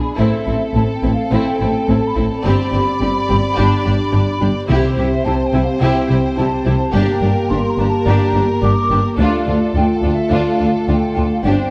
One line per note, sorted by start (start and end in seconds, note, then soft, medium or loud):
0.00 0.19 D4 soft
0.00 0.15 G#4 soft
0.00 0.14 B5 medium
0.17 0.27 A1 soft
0.17 0.27 A2 medium
0.17 0.45 C4 soft
0.17 3.53 C4 soft
0.17 0.44 E4 soft
0.17 2.44 A4 soft
0.17 2.40 A4 soft
0.17 0.75 E5 medium
0.47 0.56 A1 soft
0.47 0.55 A2 soft
0.47 0.56 C4 soft
0.47 0.55 E4 soft
0.75 0.83 A1 soft
0.75 0.83 A2 soft
0.75 0.83 C4 soft
0.75 0.84 E4 soft
0.75 0.82 A5 medium
0.94 1.13 G5 medium
1.03 1.12 A1 soft
1.03 1.13 A2 soft
1.03 1.11 C4 soft
1.03 1.11 E4 soft
1.14 1.32 F5 medium
1.31 1.40 A1 soft
1.31 1.41 A2 medium
1.31 1.58 C4 medium
1.31 1.58 E4 medium
1.31 1.88 G5 medium
1.60 1.69 A1 soft
1.60 1.69 A2 soft
1.60 1.68 C4 soft
1.60 1.68 E4 soft
1.88 1.96 A1 soft
1.88 1.97 A2 soft
1.88 1.96 C4 soft
1.88 1.97 E4 soft
1.88 2.07 A5 medium
2.07 2.26 B5 medium
2.16 2.26 A1 soft
2.16 2.25 A2 soft
2.16 2.24 C4 soft
2.16 2.24 E4 soft
2.28 2.45 A5 medium
2.43 2.54 G1 medium
2.43 2.53 G2 medium
2.43 2.71 C4 medium
2.43 6.90 G4 medium
2.43 2.71 G4 medium
2.43 4.70 D5 medium
2.43 4.47 B5 medium
2.73 2.81 G1 soft
2.73 2.81 G2 soft
2.73 2.81 C4 soft
2.73 2.81 G4 soft
3.01 3.10 G1 soft
3.01 3.09 G2 soft
3.01 3.10 C4 soft
3.01 3.09 G4 soft
3.29 3.39 G1 soft
3.29 3.38 G2 soft
3.29 3.37 C4 soft
3.29 3.37 G4 soft
3.56 3.66 G1 medium
3.56 3.66 G2 medium
3.56 4.51 D4 medium
3.56 3.83 D4 medium
3.56 3.82 G4 medium
3.84 3.95 G1 soft
3.84 3.93 G2 soft
3.84 3.93 D4 soft
3.84 3.92 G4 soft
4.12 4.22 G1 soft
4.12 4.21 G2 soft
4.12 4.21 D4 soft
4.12 4.20 G4 soft
4.41 4.51 G1 soft
4.41 4.49 G2 soft
4.41 4.49 D4 soft
4.41 4.49 G4 soft
4.68 4.78 C2 medium
4.68 5.50 C3 soft
4.68 4.78 C3 medium
4.68 6.89 C4 medium
4.68 4.95 E4 soft
4.68 4.96 G4 medium
4.68 6.90 C5 soft
4.68 5.25 E5 medium
4.98 5.06 C2 soft
4.98 5.06 C3 soft
4.98 5.06 E4 soft
4.98 5.06 G4 soft
5.24 5.34 C2 soft
5.24 5.33 C3 soft
5.24 5.34 E4 soft
5.24 5.34 G4 soft
5.24 5.44 A5 medium
5.46 5.64 G5 medium
5.53 5.61 C2 soft
5.53 5.61 C3 soft
5.53 5.61 E4 soft
5.53 5.62 G4 soft
5.64 5.82 F5 medium
5.80 5.90 C2 medium
5.80 5.89 C3 medium
5.80 6.08 E4 medium
5.80 6.08 G4 medium
5.80 6.37 G5 medium
6.09 6.18 C2 soft
6.09 6.18 C3 soft
6.09 6.17 E4 soft
6.09 6.18 G4 soft
6.36 6.46 C2 soft
6.36 6.47 C3 soft
6.36 6.46 E4 soft
6.36 6.47 G4 soft
6.36 6.92 A5 medium
6.65 6.74 C2 soft
6.65 6.74 C3 soft
6.65 6.73 E4 soft
6.65 6.75 G4 soft
6.93 7.02 G1 medium
6.93 7.02 G2 medium
6.93 9.14 A#3 medium
6.93 7.20 D4 soft
6.93 9.14 G4 medium
6.93 7.21 G4 medium
6.93 9.15 A#4 soft
6.93 7.49 G5 medium
7.22 7.31 G1 soft
7.22 7.30 G2 soft
7.22 7.30 D4 soft
7.22 7.32 G4 soft
7.48 7.59 G1 soft
7.48 7.58 G2 soft
7.48 7.58 D4 soft
7.48 7.60 G4 soft
7.48 7.68 C6 medium
7.70 7.88 A#5 medium
7.78 7.87 G1 soft
7.78 7.87 G2 soft
7.78 7.86 D4 soft
7.78 7.88 G4 soft
7.88 8.06 A5 medium
8.07 8.15 G1 medium
8.07 8.15 G2 medium
8.07 8.33 D4 medium
8.07 8.33 G4 medium
8.07 8.62 A#5 medium
8.34 8.42 G1 soft
8.34 8.43 G2 soft
8.34 8.42 D4 soft
8.34 8.43 G4 soft
8.62 8.71 G1 soft
8.62 8.71 G2 soft
8.62 8.70 D4 soft
8.62 8.71 G4 soft
8.62 9.17 D6 medium
8.91 8.99 G1 soft
8.91 8.99 G2 soft
8.91 8.99 D4 soft
8.91 8.99 G4 soft
9.17 9.26 D2 medium
9.17 9.27 D2 medium
9.17 11.44 A3 medium
9.17 9.45 D4 medium
9.17 11.40 F4 medium
9.17 9.45 F4 medium
9.17 11.40 A4 soft
9.17 9.73 D5 medium
9.47 9.55 D2 soft
9.47 9.56 D2 soft
9.47 9.55 D4 soft
9.47 9.57 F4 soft
9.75 9.83 D2 soft
9.75 9.84 D2 soft
9.75 9.83 D4 soft
9.75 9.85 F4 soft
9.75 9.94 G5 medium
9.96 10.14 F5 medium
10.03 10.11 D2 soft
10.03 10.12 D2 soft
10.03 10.11 D4 soft
10.03 10.12 F4 soft
10.13 10.32 E5 medium
10.31 10.39 D2 soft
10.31 10.40 D2 soft
10.31 10.58 D4 medium
10.31 10.57 F4 soft
10.31 10.88 F5 medium
10.59 10.68 D2 soft
10.59 10.68 D4 soft
10.59 10.67 F4 soft
10.88 10.96 D2 soft
10.88 10.96 D4 soft
10.88 10.96 F4 soft
10.88 11.31 G5 medium
11.16 11.25 D2 soft
11.16 11.24 D4 soft
11.16 11.24 F4 soft
11.33 11.46 F5 soft
11.44 11.53 G1 soft
11.44 11.52 G2 soft
11.44 11.70 C4 soft
11.44 11.70 D4 soft
11.44 11.70 G4 soft
11.44 11.70 C5 soft
11.44 11.70 G5 medium